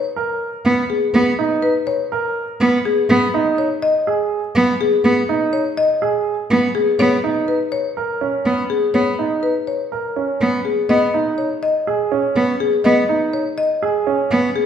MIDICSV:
0, 0, Header, 1, 4, 480
1, 0, Start_track
1, 0, Tempo, 487805
1, 1121, Time_signature, 4, 2, 24, 8
1, 14424, End_track
2, 0, Start_track
2, 0, Title_t, "Marimba"
2, 0, Program_c, 0, 12
2, 0, Note_on_c, 0, 73, 60
2, 232, Note_off_c, 0, 73, 0
2, 883, Note_on_c, 0, 68, 52
2, 1194, Note_off_c, 0, 68, 0
2, 1599, Note_on_c, 0, 71, 54
2, 1839, Note_on_c, 0, 73, 65
2, 1912, Note_off_c, 0, 71, 0
2, 2152, Note_off_c, 0, 73, 0
2, 2809, Note_on_c, 0, 68, 57
2, 3116, Note_off_c, 0, 68, 0
2, 3526, Note_on_c, 0, 73, 59
2, 3763, Note_on_c, 0, 75, 72
2, 3835, Note_off_c, 0, 73, 0
2, 4074, Note_off_c, 0, 75, 0
2, 4730, Note_on_c, 0, 68, 61
2, 5036, Note_off_c, 0, 68, 0
2, 5441, Note_on_c, 0, 73, 56
2, 5682, Note_on_c, 0, 75, 66
2, 5753, Note_off_c, 0, 73, 0
2, 5993, Note_off_c, 0, 75, 0
2, 6640, Note_on_c, 0, 68, 60
2, 6881, Note_on_c, 0, 73, 63
2, 6953, Note_off_c, 0, 68, 0
2, 7193, Note_off_c, 0, 73, 0
2, 7362, Note_on_c, 0, 71, 50
2, 7596, Note_on_c, 0, 73, 62
2, 7673, Note_off_c, 0, 71, 0
2, 7911, Note_off_c, 0, 73, 0
2, 8559, Note_on_c, 0, 68, 52
2, 8798, Note_on_c, 0, 73, 60
2, 8873, Note_off_c, 0, 68, 0
2, 9112, Note_off_c, 0, 73, 0
2, 9277, Note_on_c, 0, 71, 48
2, 9519, Note_on_c, 0, 73, 52
2, 9592, Note_off_c, 0, 71, 0
2, 9833, Note_off_c, 0, 73, 0
2, 10478, Note_on_c, 0, 68, 45
2, 10719, Note_on_c, 0, 75, 63
2, 10792, Note_off_c, 0, 68, 0
2, 11032, Note_off_c, 0, 75, 0
2, 11197, Note_on_c, 0, 73, 51
2, 11441, Note_on_c, 0, 75, 59
2, 11512, Note_off_c, 0, 73, 0
2, 11753, Note_off_c, 0, 75, 0
2, 12402, Note_on_c, 0, 68, 54
2, 12638, Note_on_c, 0, 75, 64
2, 12713, Note_off_c, 0, 68, 0
2, 12952, Note_off_c, 0, 75, 0
2, 13121, Note_on_c, 0, 73, 51
2, 13359, Note_on_c, 0, 75, 60
2, 13433, Note_off_c, 0, 73, 0
2, 13672, Note_off_c, 0, 75, 0
2, 14323, Note_on_c, 0, 68, 54
2, 14424, Note_off_c, 0, 68, 0
2, 14424, End_track
3, 0, Start_track
3, 0, Title_t, "Grand piano"
3, 0, Program_c, 1, 0
3, 162, Note_on_c, 1, 70, 52
3, 473, Note_off_c, 1, 70, 0
3, 1365, Note_on_c, 1, 63, 55
3, 1674, Note_off_c, 1, 63, 0
3, 2086, Note_on_c, 1, 70, 54
3, 2395, Note_off_c, 1, 70, 0
3, 3288, Note_on_c, 1, 63, 56
3, 3596, Note_off_c, 1, 63, 0
3, 4007, Note_on_c, 1, 68, 53
3, 4315, Note_off_c, 1, 68, 0
3, 5206, Note_on_c, 1, 63, 55
3, 5515, Note_off_c, 1, 63, 0
3, 5923, Note_on_c, 1, 68, 54
3, 6234, Note_off_c, 1, 68, 0
3, 7123, Note_on_c, 1, 63, 51
3, 7434, Note_off_c, 1, 63, 0
3, 7842, Note_on_c, 1, 70, 47
3, 8081, Note_on_c, 1, 61, 49
3, 8153, Note_off_c, 1, 70, 0
3, 8393, Note_off_c, 1, 61, 0
3, 9041, Note_on_c, 1, 63, 44
3, 9353, Note_off_c, 1, 63, 0
3, 9761, Note_on_c, 1, 70, 44
3, 10001, Note_on_c, 1, 61, 46
3, 10073, Note_off_c, 1, 70, 0
3, 10313, Note_off_c, 1, 61, 0
3, 10963, Note_on_c, 1, 63, 47
3, 11274, Note_off_c, 1, 63, 0
3, 11684, Note_on_c, 1, 68, 49
3, 11922, Note_on_c, 1, 61, 51
3, 11994, Note_off_c, 1, 68, 0
3, 12234, Note_off_c, 1, 61, 0
3, 12882, Note_on_c, 1, 63, 50
3, 13193, Note_off_c, 1, 63, 0
3, 13604, Note_on_c, 1, 68, 54
3, 13842, Note_on_c, 1, 61, 54
3, 13914, Note_off_c, 1, 68, 0
3, 14153, Note_off_c, 1, 61, 0
3, 14424, End_track
4, 0, Start_track
4, 0, Title_t, "Cello"
4, 0, Program_c, 2, 42
4, 644, Note_on_c, 2, 59, 66
4, 823, Note_off_c, 2, 59, 0
4, 1122, Note_on_c, 2, 59, 68
4, 1301, Note_off_c, 2, 59, 0
4, 2563, Note_on_c, 2, 59, 73
4, 2742, Note_off_c, 2, 59, 0
4, 3046, Note_on_c, 2, 59, 73
4, 3224, Note_off_c, 2, 59, 0
4, 4481, Note_on_c, 2, 59, 76
4, 4661, Note_off_c, 2, 59, 0
4, 4964, Note_on_c, 2, 59, 69
4, 5143, Note_off_c, 2, 59, 0
4, 6401, Note_on_c, 2, 59, 68
4, 6581, Note_off_c, 2, 59, 0
4, 6881, Note_on_c, 2, 59, 69
4, 7061, Note_off_c, 2, 59, 0
4, 8321, Note_on_c, 2, 59, 59
4, 8501, Note_off_c, 2, 59, 0
4, 8802, Note_on_c, 2, 59, 58
4, 8982, Note_off_c, 2, 59, 0
4, 10243, Note_on_c, 2, 59, 59
4, 10422, Note_off_c, 2, 59, 0
4, 10722, Note_on_c, 2, 59, 64
4, 10901, Note_off_c, 2, 59, 0
4, 12160, Note_on_c, 2, 59, 62
4, 12341, Note_off_c, 2, 59, 0
4, 12643, Note_on_c, 2, 59, 66
4, 12823, Note_off_c, 2, 59, 0
4, 14081, Note_on_c, 2, 59, 66
4, 14261, Note_off_c, 2, 59, 0
4, 14424, End_track
0, 0, End_of_file